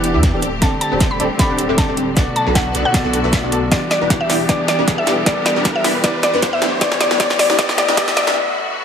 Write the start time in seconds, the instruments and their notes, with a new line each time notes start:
Already playing: sub bass E1, string section E3 G3 B3 D4 G4, tine electric piano E3 B3 G4 D5, synth pluck B4, riser
0.04 closed hi-hat
0.14 sub bass E2, supersaw synth B3 D4 E4 G4 E5
0.23 kick, snare, closed hi-hat
0.33 sub bass D1, supersaw synth C4 D4 G4 A4 D5
0.42 string section D3 G3 A3 C4, closed hi-hat
0.60 sub bass D1, tine electric piano D3 C4 G4, supersaw synth C4 D4 G4 A4 D5, synth pluck A5, kick, snare, closed hi-hat
0.64 tine electric piano D5
0.81 synth pluck A5, closed hi-hat
0.92 sub bass D1, supersaw synth C4 D4 G4 A4 C5
1.00 kick, snare, closed hi-hat
1.11 synth pluck B5
1.20 sub bass D1, supersaw synth C4 D4 G4 A4 D5, closed hi-hat
1.37 tine electric piano D3 C4 G4 D5, synth pluck B5, kick, snare, closed hi-hat
1.50 sub bass D1, supersaw synth C4 D4 G4 A4 F#5
1.59 closed hi-hat
1.69 sub bass D1, supersaw synth C4 D4 G4 A4 E5
1.78 synth pluck A5, kick, snare, closed hi-hat
1.88 sub bass D1, supersaw synth C4 D4 G4 A4 D5
1.97 closed hi-hat
2.15 sub bass B1, tine electric piano B2 B3 A4 D5, string section D3 F#3 A3 B3 F#4, supersaw synth B3 D4 F#4 A4 D5, kick, snare, closed hi-hat
2.36 synth pluck A5, closed hi-hat
2.46 sub bass B1, supersaw synth B3 D4 F#4 A4 B4
2.55 synth pluck F#5, kick, snare, closed hi-hat
2.75 sub bass B1, supersaw synth B3 D4 F#4 A4 D5, closed hi-hat
2.85 synth pluck F#5
2.92 tine electric piano B2 B3 A4, kick, snare, closed hi-hat
2.96 tine electric piano D5
3.05 sub bass B1, supersaw synth B3 D4 F#4 A4 F#5
3.13 closed hi-hat
3.24 sub bass B1, supersaw synth B3 D4 F#4 A4 E5
3.33 kick, snare, closed hi-hat
3.43 sub bass B1, supersaw synth B3 D4 F#4 A4 D5
3.51 tine electric piano B2 B3 A4 D5, closed hi-hat
3.70 sub bass E1, tine electric piano E3 B3 G4 D5, string section E3 G3 B3 D4 G4, supersaw synth B3 D4 E4 G4 D5, synth pluck D5, kick, snare, closed hi-hat
3.91 synth pluck D5, snare, closed hi-hat
4.01 sub bass E1, supersaw synth B3 D4 E4 G4 B4
4.10 kick, snare, closed hi-hat
4.21 synth pluck E5
4.29 sub bass E1, supersaw synth B3 D4 E4 G4 D5, snare, open hi-hat
4.47 sub bass E1, tine electric piano E3 B3 G4, supersaw synth B3 D4 E4 G4 D5, synth pluck D5, kick, snare, closed hi-hat
4.51 tine electric piano D5
4.68 synth pluck D5, snare, closed hi-hat
4.79 sub bass E1, supersaw synth B3 D4 E4 G4 B4
4.88 kick, snare, closed hi-hat
4.98 synth pluck E5
5.07 sub bass E1, supersaw synth B3 D4 E4 G4 D5, snare, closed hi-hat
5.24 sub bass E1, tine electric piano E3 B3 G4 D5, supersaw synth B3 D4 E4 G4 D5, synth pluck D5, kick, snare, closed hi-hat
5.46 synth pluck D5, snare, closed hi-hat
5.56 sub bass E1, supersaw synth B3 D4 E4 G4 B4
5.65 kick, snare, closed hi-hat
5.76 synth pluck E5
5.84 sub bass E1, supersaw synth B3 D4 E4 G4 D5, snare, open hi-hat
6.02 sub bass E1, tine electric piano E3 B3 G4, supersaw synth B3 D4 E4 G4 D5, synth pluck D5, kick, snare, closed hi-hat
6.06 tine electric piano D5
6.23 synth pluck D5, snare, closed hi-hat
6.33 sub bass E2, supersaw synth B3 D4 E4 G4 B4
6.42 kick, snare, closed hi-hat
6.53 synth pluck E5
6.62 sub bass D1, string section D3 A3 G4, supersaw synth B3 D4 E4 G4 D5, snare, closed hi-hat
6.79 sub bass D1, tine electric piano E3 B3 G4 D5, supersaw synth B3 D4 E4 G4 D5, synth pluck D5, kick, snare, closed hi-hat
6.92 snare
7.01 synth pluck D5, snare, closed hi-hat
7.11 sub bass D1, supersaw synth B3 D4 E4 G4 B4, snare
7.18 sub bass D1, tine electric piano E3 B3 G4 D5, supersaw synth B3 D4 E4 G4 D5, synth pluck D5, kick, snare, closed hi-hat
7.30 snare
7.39 synth pluck D5, snare, open hi-hat
7.50 sub bass D1, supersaw synth B3 D4 E4 G4 B4, snare
7.57 sub bass D1, tine electric piano E3 B3 G4 D5, supersaw synth B3 E4 G4, synth pluck D5, kick, snare, closed hi-hat
7.69 snare
7.78 synth pluck D5, snare, closed hi-hat
7.88 sub bass D1, supersaw synth B3 D4 E4 G4 B4, snare
7.95 sub bass D2, tine electric piano E3 B3 G4 D5, supersaw synth D4 E4 G4 D5, synth pluck D5, kick, snare, closed hi-hat
8.08 snare
8.17 synth pluck D5, snare, closed hi-hat
8.27 sub bass B1, supersaw synth B3 D4 E4 G4 B4, snare
8.36 string section F#3 A3 B3 F#4